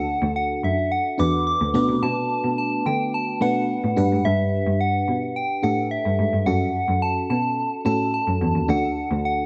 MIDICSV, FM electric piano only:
0, 0, Header, 1, 2, 480
1, 0, Start_track
1, 0, Key_signature, 2, "major"
1, 0, Tempo, 555556
1, 1746, Time_signature, 4, 2, 24, 8
1, 8173, End_track
2, 0, Start_track
2, 0, Title_t, "FM electric piano"
2, 0, Program_c, 0, 5
2, 0, Control_c, 0, 64, 127
2, 0, Note_on_c, 0, 62, 69
2, 0, Note_on_c, 0, 66, 71
2, 0, Note_on_c, 0, 69, 83
2, 661, Note_off_c, 0, 62, 0
2, 664, Note_off_c, 0, 66, 0
2, 666, Note_off_c, 0, 69, 0
2, 1019, Note_on_c, 0, 62, 73
2, 1025, Note_on_c, 0, 66, 69
2, 1030, Note_on_c, 0, 71, 87
2, 1495, Note_off_c, 0, 62, 0
2, 1498, Note_off_c, 0, 66, 0
2, 1502, Note_off_c, 0, 71, 0
2, 1502, Note_on_c, 0, 57, 84
2, 1503, Note_on_c, 0, 59, 80
2, 1505, Note_on_c, 0, 62, 78
2, 1508, Note_on_c, 0, 66, 75
2, 1513, Note_on_c, 0, 71, 93
2, 1517, Control_c, 0, 64, 0
2, 1647, Control_c, 0, 64, 127
2, 2343, Note_off_c, 0, 57, 0
2, 2344, Note_off_c, 0, 59, 0
2, 2345, Note_off_c, 0, 62, 0
2, 2347, Note_off_c, 0, 66, 0
2, 2349, Note_off_c, 0, 71, 0
2, 2944, Note_on_c, 0, 57, 74
2, 2944, Note_on_c, 0, 59, 72
2, 2948, Note_on_c, 0, 62, 71
2, 2951, Note_on_c, 0, 66, 66
2, 2953, Note_on_c, 0, 71, 83
2, 3415, Note_off_c, 0, 62, 0
2, 3425, Note_off_c, 0, 57, 0
2, 3425, Note_off_c, 0, 59, 0
2, 3425, Note_off_c, 0, 71, 0
2, 3425, Note_on_c, 0, 62, 80
2, 3428, Note_off_c, 0, 66, 0
2, 3429, Note_on_c, 0, 67, 73
2, 3435, Control_c, 0, 64, 0
2, 3436, Note_on_c, 0, 71, 92
2, 3586, Control_c, 0, 64, 127
2, 4265, Note_off_c, 0, 62, 0
2, 4267, Note_off_c, 0, 67, 0
2, 4270, Note_off_c, 0, 71, 0
2, 4861, Note_on_c, 0, 62, 70
2, 4867, Note_on_c, 0, 67, 67
2, 4871, Note_on_c, 0, 69, 79
2, 5493, Note_off_c, 0, 62, 0
2, 5496, Note_off_c, 0, 67, 0
2, 5498, Note_off_c, 0, 69, 0
2, 5582, Note_on_c, 0, 61, 75
2, 5588, Note_on_c, 0, 66, 67
2, 5594, Note_on_c, 0, 69, 79
2, 5597, Control_c, 0, 64, 0
2, 5752, Control_c, 0, 64, 127
2, 6424, Note_off_c, 0, 61, 0
2, 6427, Note_off_c, 0, 66, 0
2, 6429, Note_off_c, 0, 69, 0
2, 6781, Note_on_c, 0, 61, 75
2, 6786, Note_on_c, 0, 66, 70
2, 6791, Note_on_c, 0, 69, 83
2, 7413, Note_off_c, 0, 61, 0
2, 7415, Note_off_c, 0, 66, 0
2, 7418, Note_off_c, 0, 69, 0
2, 7501, Note_on_c, 0, 62, 77
2, 7507, Note_on_c, 0, 66, 70
2, 7510, Note_on_c, 0, 69, 81
2, 7518, Control_c, 0, 64, 0
2, 7654, Control_c, 0, 64, 127
2, 8173, Note_off_c, 0, 62, 0
2, 8173, Note_off_c, 0, 66, 0
2, 8173, Note_off_c, 0, 69, 0
2, 8173, End_track
0, 0, End_of_file